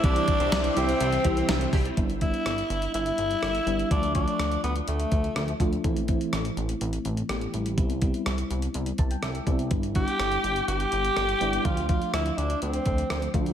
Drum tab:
HH |xxxxxxxxxxxxxxox|xxxxxxxxxxxxxxxx|xxxxxxxxxxxxxxxx|xxxxxxxxxxxxxxxx|
TB |----x-------x---|----------------|----------------|----------------|
SD |----o-------o---|----r-------r---|----r-------r---|----r-------r---|
BD |o-o-------o---o-|o-o-------------|o-o-------o---o-|o-o-------------|

HH |xxxxxxxxxxxxxxxx|xxxxxxxxxxxxxxxx|xxxxxxxxxxxxxxxx|
TB |----------------|----------------|----------------|
SD |----r-------r---|----r-------r---|----r-------r---|
BD |o-o-------o---o-|o-o-------------|o-o-------o---o-|